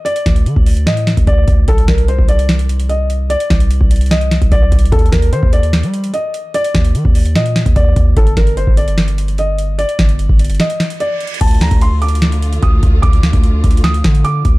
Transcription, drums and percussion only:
0.06 closed hi-hat
0.16 closed hi-hat
0.26 kick, snare, closed hi-hat
0.36 closed hi-hat
0.46 closed hi-hat
0.56 kick
0.66 open hi-hat
0.77 closed hi-hat
0.87 snare, closed hi-hat
0.97 closed hi-hat
1.07 snare, closed hi-hat
1.17 kick, closed hi-hat
1.27 kick, closed hi-hat
1.48 kick, closed hi-hat
1.68 kick, closed hi-hat
1.78 closed hi-hat
1.88 kick, snare, closed hi-hat
1.98 closed hi-hat
2.08 closed hi-hat
2.18 kick
2.29 closed hi-hat
2.39 closed hi-hat
2.49 snare, closed hi-hat
2.59 closed hi-hat
2.69 closed hi-hat
2.80 closed hi-hat
2.90 closed hi-hat
3.10 closed hi-hat
3.30 closed hi-hat
3.40 closed hi-hat
3.50 kick, snare, closed hi-hat
3.60 closed hi-hat
3.71 closed hi-hat
3.81 kick
3.91 closed hi-hat, open hi-hat
3.96 closed hi-hat
4.01 closed hi-hat
4.06 closed hi-hat
4.11 snare, closed hi-hat
4.21 closed hi-hat
4.31 snare, closed hi-hat
4.42 kick, closed hi-hat
4.52 kick, closed hi-hat
4.72 kick, closed hi-hat
4.79 closed hi-hat
4.85 closed hi-hat
4.92 kick, closed hi-hat
4.99 closed hi-hat
5.06 closed hi-hat
5.12 kick, snare, closed hi-hat
5.22 closed hi-hat
5.33 closed hi-hat
5.43 kick
5.53 closed hi-hat
5.63 closed hi-hat
5.73 snare, closed hi-hat
5.83 closed hi-hat
5.94 closed hi-hat
6.04 closed hi-hat
6.14 closed hi-hat
6.34 closed hi-hat
6.54 closed hi-hat
6.64 closed hi-hat
6.75 kick, snare, closed hi-hat
6.85 closed hi-hat
6.95 closed hi-hat
7.05 kick
7.15 open hi-hat
7.25 closed hi-hat
7.36 snare, closed hi-hat
7.46 closed hi-hat
7.56 snare, closed hi-hat
7.66 kick, closed hi-hat
7.76 kick, closed hi-hat
7.96 kick, closed hi-hat
8.17 kick, closed hi-hat
8.27 closed hi-hat
8.37 kick, snare, closed hi-hat
8.47 closed hi-hat
8.57 closed hi-hat
8.67 kick
8.77 closed hi-hat
8.88 closed hi-hat
8.98 snare, closed hi-hat
9.08 closed hi-hat
9.18 closed hi-hat
9.28 closed hi-hat
9.38 closed hi-hat
9.58 closed hi-hat
9.79 closed hi-hat
9.89 closed hi-hat
9.99 kick, snare, closed hi-hat
10.09 closed hi-hat
10.19 closed hi-hat
10.29 kick
10.39 closed hi-hat, open hi-hat
10.45 closed hi-hat
10.50 closed hi-hat
10.55 closed hi-hat
10.60 snare, closed hi-hat
10.70 closed hi-hat
10.80 snare, closed hi-hat
10.90 closed hi-hat
11.00 closed hi-hat
11.21 closed hi-hat
11.27 closed hi-hat
11.34 closed hi-hat
11.41 kick, closed hi-hat, crash
11.48 closed hi-hat
11.51 closed hi-hat
11.54 closed hi-hat
11.61 snare, closed hi-hat
11.71 kick, closed hi-hat
11.81 closed hi-hat
12.02 closed hi-hat
12.09 closed hi-hat
12.15 closed hi-hat
12.22 snare, closed hi-hat
12.32 closed hi-hat
12.42 closed hi-hat
12.53 closed hi-hat
12.62 kick, closed hi-hat
12.83 kick, closed hi-hat
13.03 kick, closed hi-hat
13.13 closed hi-hat
13.23 snare, closed hi-hat
13.33 kick, closed hi-hat
13.44 closed hi-hat
13.64 kick, closed hi-hat
13.71 closed hi-hat
13.77 closed hi-hat
13.84 snare, closed hi-hat
13.94 closed hi-hat
14.04 kick, snare, closed hi-hat
14.15 closed hi-hat
14.25 closed hi-hat
14.45 kick, closed hi-hat

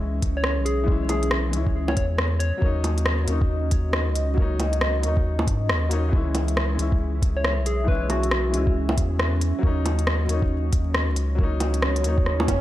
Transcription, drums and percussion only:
0.22 kick, closed hi-hat
0.44 cross-stick
0.66 closed hi-hat
0.88 kick
1.09 closed hi-hat, low bongo
1.23 closed hi-hat
1.31 cross-stick
1.53 closed hi-hat
1.67 kick
1.88 low bongo
1.97 kick, closed hi-hat
2.18 cross-stick
2.40 closed hi-hat
2.62 kick
2.84 closed hi-hat, low bongo
2.98 closed hi-hat
3.06 cross-stick
3.28 closed hi-hat
3.41 kick
3.71 kick, closed hi-hat
3.93 cross-stick
4.15 closed hi-hat
4.38 kick
4.60 closed hi-hat, low bongo
4.73 closed hi-hat
4.81 cross-stick
5.03 closed hi-hat
5.17 kick
5.39 low bongo
5.47 kick, closed hi-hat
5.69 cross-stick
5.91 closed hi-hat
6.13 kick
6.35 closed hi-hat, low bongo
6.48 closed hi-hat
6.57 cross-stick
6.79 closed hi-hat
6.92 kick
7.22 kick, closed hi-hat
7.44 cross-stick
7.66 closed hi-hat
7.88 kick
8.10 closed hi-hat, low bongo
8.23 closed hi-hat
8.31 cross-stick
8.54 closed hi-hat
8.67 kick
8.89 low bongo
8.97 kick, closed hi-hat
9.19 cross-stick
9.41 closed hi-hat
9.63 kick
9.86 closed hi-hat, low bongo
9.99 closed hi-hat
10.07 cross-stick
10.29 closed hi-hat
10.42 kick
10.73 kick, closed hi-hat
10.94 cross-stick
11.16 closed hi-hat
11.39 kick
11.60 closed hi-hat, low bongo
11.74 closed hi-hat
11.82 cross-stick
11.96 closed hi-hat
12.04 closed hi-hat
12.18 kick
12.26 cross-stick
12.40 low bongo
12.48 kick, closed hi-hat, low bongo

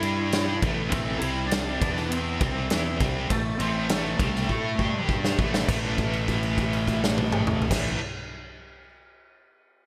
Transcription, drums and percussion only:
0.03 ride
0.32 snare, ride
0.62 kick, ride
0.92 kick, ride
1.22 ride
1.51 snare, ride
1.82 kick, ride
1.97 snare
2.12 ride
2.41 kick, ride
2.70 snare, ride
3.00 kick, ride
3.30 kick, ride
3.60 ride
3.89 snare, ride
4.19 kick, ride
4.36 snare
4.49 kick
4.79 kick
5.09 kick
5.25 snare
5.39 kick
5.54 snare
5.69 kick, crash
5.98 kick, crash
6.13 crash
6.28 kick, crash
6.43 crash
6.58 kick, crash
6.73 crash
6.87 kick, crash
7.04 snare
7.18 high tom
7.32 mid tom
7.47 mid tom
7.62 floor tom
7.71 kick, snare, crash

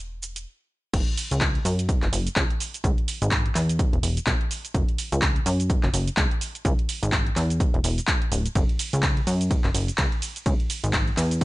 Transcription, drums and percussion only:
0.23 shaker
0.36 closed hi-hat, shaker
0.94 kick, closed hi-hat, crash, shaker
1.08 closed hi-hat
1.17 open hi-hat, shaker
1.31 closed hi-hat, shaker
1.41 kick, clap, closed hi-hat, shaker
1.55 closed hi-hat
1.65 open hi-hat, shaker
1.79 closed hi-hat, shaker
1.89 kick, closed hi-hat, shaker
2.02 clap, closed hi-hat
2.13 open hi-hat, shaker
2.27 closed hi-hat, shaker
2.36 kick, clap, closed hi-hat, shaker
2.50 closed hi-hat
2.60 open hi-hat, shaker
2.74 closed hi-hat, shaker
2.84 kick, closed hi-hat, shaker
2.98 closed hi-hat
3.08 open hi-hat, shaker
3.22 closed hi-hat, shaker
3.31 kick, clap, closed hi-hat, shaker
3.46 closed hi-hat
3.55 clap, open hi-hat, shaker
3.69 closed hi-hat, shaker
3.79 kick, closed hi-hat, shaker
3.93 closed hi-hat
4.03 open hi-hat, shaker
4.17 closed hi-hat, shaker
4.27 kick, clap, closed hi-hat, shaker
4.41 closed hi-hat
4.51 open hi-hat, shaker
4.65 closed hi-hat, shaker
4.74 kick, closed hi-hat, shaker
4.89 closed hi-hat
4.98 open hi-hat, shaker
5.12 closed hi-hat, shaker
5.22 kick, clap, closed hi-hat, shaker
5.36 closed hi-hat
5.46 open hi-hat, shaker
5.60 closed hi-hat, shaker
5.70 kick, closed hi-hat, shaker
5.83 clap, closed hi-hat
5.94 open hi-hat, shaker
6.08 closed hi-hat, shaker
6.17 kick, clap, closed hi-hat, shaker
6.31 closed hi-hat
6.41 open hi-hat, shaker
6.55 closed hi-hat, shaker
6.65 kick, closed hi-hat, shaker
6.79 closed hi-hat
6.89 open hi-hat, shaker
7.03 closed hi-hat, shaker
7.12 kick, clap, closed hi-hat, shaker
7.27 closed hi-hat
7.36 clap, open hi-hat, shaker
7.50 closed hi-hat, shaker
7.60 kick, closed hi-hat, shaker
7.74 closed hi-hat
7.84 open hi-hat, shaker
7.98 closed hi-hat, shaker
8.07 kick, clap, closed hi-hat, shaker
8.22 closed hi-hat
8.32 open hi-hat, shaker
8.46 closed hi-hat, shaker
8.55 kick, closed hi-hat, ride, shaker
8.69 closed hi-hat
8.79 open hi-hat, ride, shaker
8.93 closed hi-hat, shaker
9.03 kick, clap, closed hi-hat, ride, shaker
9.17 closed hi-hat
9.27 open hi-hat, ride, shaker
9.41 closed hi-hat, shaker
9.51 kick, closed hi-hat, ride, shaker
9.64 clap, closed hi-hat
9.75 open hi-hat, ride, shaker
9.88 closed hi-hat, shaker
9.98 kick, clap, closed hi-hat, ride, shaker
10.12 closed hi-hat
10.22 open hi-hat, ride, shaker
10.36 closed hi-hat, shaker
10.46 kick, closed hi-hat, ride, shaker
10.60 closed hi-hat
10.70 open hi-hat, ride, shaker
10.84 closed hi-hat, shaker
10.93 kick, clap, closed hi-hat, ride, shaker
11.08 closed hi-hat
11.17 clap, open hi-hat, ride, shaker
11.31 closed hi-hat, shaker

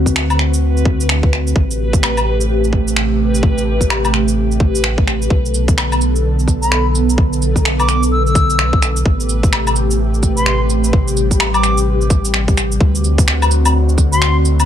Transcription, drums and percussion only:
0.06 kick, shaker
0.16 finger snap
0.30 low woodblock, shaker
0.39 finger snap
0.54 shaker
0.77 shaker
0.85 kick
1.00 shaker
1.09 finger snap
1.23 kick
1.33 finger snap
1.47 shaker
1.56 kick
1.71 shaker
1.93 kick, shaker
2.03 finger snap, low woodblock
2.17 low woodblock, shaker
2.41 shaker
2.64 shaker
2.73 kick
2.88 shaker
2.96 finger snap
3.35 shaker
3.43 kick
3.58 shaker
3.81 kick, shaker
3.90 finger snap, low woodblock
4.05 low woodblock, shaker
4.14 finger snap
4.28 shaker
4.51 shaker
4.60 kick
4.75 shaker
4.84 finger snap
4.98 kick
5.08 finger snap
5.22 shaker
5.30 kick
5.46 shaker
5.54 cabasa
5.68 kick, shaker
5.78 finger snap, low woodblock
5.92 cabasa, low woodblock, shaker
6.01 cabasa
6.16 shaker
6.39 shaker
6.48 kick, cabasa
6.63 shaker
6.72 finger snap
6.95 cabasa
7.10 shaker
7.18 kick
7.33 shaker
7.42 cabasa
7.56 kick, shaker
7.65 finger snap
7.80 low woodblock, shaker
7.89 finger snap, cabasa
8.03 shaker
8.27 shaker
8.35 kick, cabasa
8.50 cabasa, shaker
8.59 finger snap
8.73 kick
8.82 finger snap, cabasa
8.96 shaker
9.06 kick
9.20 shaker
9.29 cabasa
9.43 kick, shaker
9.53 finger snap, low woodblock
9.67 cabasa, low woodblock, shaker
9.76 cabasa
9.91 shaker
10.14 shaker
10.23 kick, cabasa
10.37 shaker
10.46 finger snap
10.70 cabasa
10.84 shaker
10.93 kick
11.08 shaker
11.17 cabasa
11.31 kick, shaker
11.40 finger snap, low woodblock
11.54 cabasa, low woodblock, shaker
11.63 finger snap, cabasa
11.78 shaker
12.01 shaker
12.10 kick, cabasa
12.25 cabasa, shaker
12.34 finger snap
12.48 kick, shaker
12.57 finger snap, cabasa
12.72 shaker
12.81 kick
12.95 shaker
13.04 cabasa
13.18 kick, shaker
13.28 finger snap
13.42 low woodblock, shaker
13.51 cabasa
13.65 low woodblock, shaker
13.89 shaker
13.98 kick, cabasa
14.13 shaker
14.22 finger snap
14.45 cabasa
14.60 low woodblock, shaker

